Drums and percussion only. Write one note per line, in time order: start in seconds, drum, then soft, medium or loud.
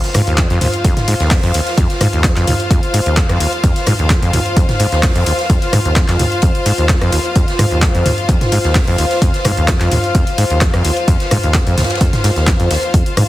0.03 snare soft
0.03 closed hi-hat soft
0.14 cross-stick medium
0.14 mid tom medium
0.14 open hi-hat loud
0.14 ride medium
0.27 closed hi-hat soft
0.38 kick loud
0.38 snare loud
0.38 clap loud
0.38 closed hi-hat medium
0.38 ride medium
0.50 closed hi-hat soft
0.61 mid tom medium
0.61 open hi-hat loud
0.61 ride medium
0.73 closed hi-hat soft
0.85 kick loud
0.85 closed hi-hat loud
0.85 ride medium
0.97 snare soft
0.97 closed hi-hat soft
0.97 mid tom medium
1.07 open hi-hat loud
1.07 ride medium
1.20 snare medium
1.20 closed hi-hat soft
1.31 kick loud
1.31 snare loud
1.31 clap loud
1.31 closed hi-hat medium
1.31 open hi-hat medium
1.43 closed hi-hat soft
1.54 open hi-hat loud
1.54 ride medium
1.67 snare soft
1.67 closed hi-hat soft
1.78 kick loud
1.78 closed hi-hat medium
1.78 ride medium
1.89 snare soft
1.89 closed hi-hat soft
2.00 cross-stick medium
2.00 mid tom medium
2.00 open hi-hat loud
2.00 ride medium
2.13 closed hi-hat soft
2.24 kick loud
2.24 snare loud
2.24 clap loud
2.24 closed hi-hat medium
2.24 ride medium
2.36 snare soft
2.36 clap soft
2.36 closed hi-hat soft
2.47 mid tom medium
2.47 open hi-hat loud
2.47 ride medium
2.60 closed hi-hat soft
2.71 kick loud
2.71 closed hi-hat loud
2.71 ride medium
2.83 closed hi-hat soft
2.94 open hi-hat loud
2.94 ride medium
3.06 closed hi-hat soft
3.06 ride soft
3.17 kick loud
3.17 snare loud
3.17 clap loud
3.17 closed hi-hat medium
3.17 ride medium
3.29 cross-stick medium
3.29 closed hi-hat soft
3.40 open hi-hat loud
3.40 ride medium
3.52 closed hi-hat soft
3.52 ride soft
3.63 kick loud
3.63 closed hi-hat loud
3.63 ride medium
3.76 snare soft
3.76 closed hi-hat soft
3.86 cross-stick medium
3.86 mid tom medium
3.86 open hi-hat loud
3.86 ride medium
3.99 closed hi-hat soft
4.10 kick loud
4.10 snare loud
4.10 clap loud
4.10 closed hi-hat medium
4.10 ride medium
4.22 closed hi-hat soft
4.33 mid tom medium
4.33 open hi-hat loud
4.33 ride medium
4.46 closed hi-hat soft
4.57 kick loud
4.57 closed hi-hat medium
4.57 ride medium
4.69 snare soft
4.69 closed hi-hat soft
4.69 mid tom medium
4.79 open hi-hat loud
4.79 ride medium
4.92 snare medium
4.92 closed hi-hat soft
5.02 kick loud
5.02 snare loud
5.02 clap loud
5.02 closed hi-hat medium
5.02 open hi-hat medium
5.15 closed hi-hat soft
5.26 open hi-hat loud
5.26 ride medium
5.39 snare soft
5.39 closed hi-hat soft
5.50 kick loud
5.50 closed hi-hat medium
5.50 ride medium
5.61 snare soft
5.61 closed hi-hat soft
5.73 cross-stick medium
5.73 mid tom medium
5.73 open hi-hat loud
5.73 ride medium
5.85 closed hi-hat soft
5.96 kick loud
5.96 snare loud
5.96 clap loud
5.96 closed hi-hat medium
5.96 ride medium
6.08 snare soft
6.08 clap soft
6.08 closed hi-hat soft
6.19 mid tom medium
6.19 open hi-hat loud
6.19 ride medium
6.32 closed hi-hat soft
6.42 kick loud
6.42 closed hi-hat medium
6.42 ride medium
6.55 closed hi-hat soft
6.66 open hi-hat loud
6.66 ride medium
6.78 closed hi-hat soft
6.78 ride soft
6.89 kick loud
6.89 snare loud
6.89 clap loud
6.89 closed hi-hat medium
6.89 ride medium
7.02 cross-stick medium
7.02 closed hi-hat soft
7.12 open hi-hat loud
7.12 ride medium
7.25 closed hi-hat soft
7.25 ride soft
7.35 kick loud
7.35 closed hi-hat medium
7.35 ride medium
7.48 snare soft
7.48 closed hi-hat soft
7.59 cross-stick medium
7.59 mid tom medium
7.59 open hi-hat loud
7.59 ride medium
7.71 closed hi-hat soft
7.82 kick loud
7.82 snare loud
7.82 clap loud
7.82 closed hi-hat medium
7.82 ride medium
7.95 closed hi-hat soft
8.06 mid tom medium
8.06 open hi-hat loud
8.06 ride medium
8.18 closed hi-hat soft
8.28 kick loud
8.28 closed hi-hat medium
8.28 ride medium
8.41 snare soft
8.41 closed hi-hat soft
8.41 mid tom medium
8.52 open hi-hat loud
8.52 ride medium
8.64 snare medium
8.64 closed hi-hat soft
8.75 kick loud
8.75 snare loud
8.75 clap loud
8.75 closed hi-hat medium
8.75 open hi-hat medium
8.88 closed hi-hat soft
8.98 open hi-hat loud
8.98 ride medium
9.11 snare soft
9.11 closed hi-hat soft
9.22 kick loud
9.22 closed hi-hat medium
9.22 ride medium
9.34 snare soft
9.34 closed hi-hat soft
9.44 cross-stick medium
9.44 mid tom loud
9.44 open hi-hat loud
9.44 ride medium
9.57 closed hi-hat soft
9.68 kick loud
9.68 snare loud
9.68 clap loud
9.68 closed hi-hat medium
9.68 ride medium
9.80 snare soft
9.80 clap soft
9.80 closed hi-hat soft
9.91 mid tom medium
9.91 open hi-hat loud
9.91 ride medium
10.04 closed hi-hat soft
10.15 kick loud
10.15 closed hi-hat medium
10.15 ride medium
10.27 closed hi-hat soft
10.38 open hi-hat loud
10.38 ride medium
10.50 closed hi-hat soft
10.50 ride soft
10.61 kick loud
10.61 snare loud
10.61 clap loud
10.61 closed hi-hat medium
10.61 ride medium
10.74 cross-stick medium
10.74 closed hi-hat soft
10.85 open hi-hat loud
10.85 ride medium
10.96 closed hi-hat soft
10.96 ride soft
11.08 kick loud
11.08 closed hi-hat loud
11.08 ride medium
11.20 snare soft
11.20 closed hi-hat soft
11.31 cross-stick medium
11.31 mid tom medium
11.31 open hi-hat loud
11.31 ride medium
11.43 closed hi-hat soft
11.54 kick loud
11.54 snare loud
11.54 clap loud
11.54 closed hi-hat medium
11.54 ride medium
11.67 closed hi-hat soft
11.78 snare medium
11.78 mid tom medium
11.78 open hi-hat loud
11.78 ride medium
11.84 snare medium
11.84 ride medium
11.90 snare medium
11.90 closed hi-hat soft
11.90 ride medium
11.95 snare medium
11.95 ride medium
12.01 kick loud
12.01 closed hi-hat loud
12.01 ride medium
12.13 snare soft
12.13 closed hi-hat soft
12.13 mid tom loud
12.24 snare loud
12.24 open hi-hat loud
12.24 ride medium
12.36 snare medium
12.36 closed hi-hat soft
12.47 kick loud
12.47 snare loud
12.47 clap loud
12.47 closed hi-hat medium
12.47 ride medium
12.60 closed hi-hat soft
12.70 snare loud
12.70 open hi-hat loud
12.70 ride medium
12.83 closed hi-hat soft
12.94 kick loud
12.94 closed hi-hat loud
12.94 ride medium
13.06 closed hi-hat soft
13.17 cross-stick medium
13.17 mid tom medium
13.17 open hi-hat loud
13.17 ride medium